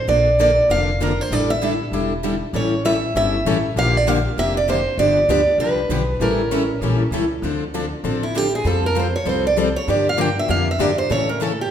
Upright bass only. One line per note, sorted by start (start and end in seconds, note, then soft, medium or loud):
0.08 0.57 A#1 medium
0.69 1.19 F1 medium
1.31 1.80 A1 medium
1.92 2.41 E1 medium
2.53 3.02 A1 medium
3.15 3.41 G1 medium
3.45 3.71 A1 medium
3.76 4.25 A#1 medium
4.37 4.86 F1 medium
4.98 5.22 G1 medium
5.28 5.55 D2 medium
5.58 5.85 C2 medium
5.89 6.16 B1 medium
6.20 6.69 A1 medium
6.81 7.07 A#1 medium
7.11 7.38 C#2 medium
7.42 7.92 D2 medium
8.04 8.53 A1 medium
8.64 9.14 F2 medium
9.26 9.75 C2 medium
9.88 10.37 G2 medium
10.49 10.75 F2 medium
10.79 11.05 G2 medium
11.10 11.59 A2 medium